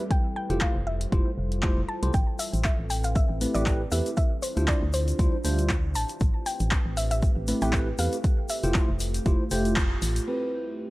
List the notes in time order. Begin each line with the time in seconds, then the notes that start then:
Already playing: G3 E4 A4
0.10 F4 C5 G5, kick, closed hi-hat
0.36 G5
0.50 F1 A3 E4 F4 G4 C5, closed hi-hat
0.61 F5, kick, clap, closed hi-hat
0.75 F1
0.87 E5
1.01 closed hi-hat
1.12 F1 A3 E4 F4 G4 C5, kick, closed hi-hat
1.38 F1
1.52 closed hi-hat
1.63 A3 E4 F4 G4 C5, kick, clap, closed hi-hat
1.77 F1
1.89 A5
2.03 C2 A3 E4 F4 G4 C5, closed hi-hat
2.14 A1 C4 E4 A4 B4 G5, kick, closed hi-hat, shaker
2.39 E5, open hi-hat, shaker
2.53 A1, closed hi-hat, shaker
2.64 E5, kick, clap, closed hi-hat, shaker
2.79 A1
2.90 G5, open hi-hat, shaker
3.03 F5, closed hi-hat, shaker
3.15 E5, kick, closed hi-hat, shaker
3.30 A1
3.41 A3 C4 E4 G4 B4, open hi-hat, shaker
3.55 A1 A3 C4 E4 G4 B4 D5, closed hi-hat, shaker
3.66 kick, clap, closed hi-hat, shaker
3.92 E2 A3 C4 E4 G4 B4 E5, open hi-hat, shaker
4.06 closed hi-hat, shaker
4.17 D4 F4 C5 E5, kick, closed hi-hat, shaker
4.42 C5, open hi-hat, shaker
4.57 D2 G3 D4 E4 F4 C5, closed hi-hat, shaker
4.68 D5, kick, clap, closed hi-hat, shaker
4.82 D2
4.93 C5, open hi-hat, shaker
5.08 closed hi-hat, shaker
5.19 D2 G3 D4 E4 F4 C5, kick, closed hi-hat, shaker
5.44 D2 G3 D4 E4 F4 C5, open hi-hat, shaker
5.58 closed hi-hat, shaker
5.69 kick, clap, closed hi-hat, shaker
5.95 A1 A3 C4 G4 B4 A5, open hi-hat, shaker
6.09 closed hi-hat, shaker
6.20 A1, kick, closed hi-hat, shaker
6.46 G5, open hi-hat, shaker
6.60 A1, closed hi-hat, shaker
6.71 kick, clap, closed hi-hat, shaker
6.86 A1
6.97 E5, open hi-hat, shaker
7.11 E5, closed hi-hat, shaker
7.22 kick, closed hi-hat, shaker
7.37 A1
7.48 A3 C4 E4 G4 B4, open hi-hat, shaker
7.62 A1 A3 C4 E4 G4 B4 G5, closed hi-hat, shaker
7.73 kick, clap, closed hi-hat, shaker
7.99 E2 A3 C4 E4 G4 B4 F5, open hi-hat, shaker
8.12 closed hi-hat, shaker
8.24 F4 C5, kick, closed hi-hat, shaker
8.49 E5, open hi-hat, shaker
8.63 F1 A3 E4 F4 G4 C5, closed hi-hat, shaker
8.74 kick, clap, closed hi-hat, shaker
8.89 F1
9.00 open hi-hat, shaker
9.14 closed hi-hat, shaker
9.26 F1 A3 E4 F4 G4 C5, kick, closed hi-hat, shaker
9.51 F1 A3 E4 F4 G4 C5, open hi-hat, shaker
9.65 closed hi-hat, shaker
9.76 kick, clap, closed hi-hat, shaker
10.02 A1, open hi-hat, shaker
10.16 closed hi-hat, shaker
10.27 A3 C4 E4 G4 B4 E5, crash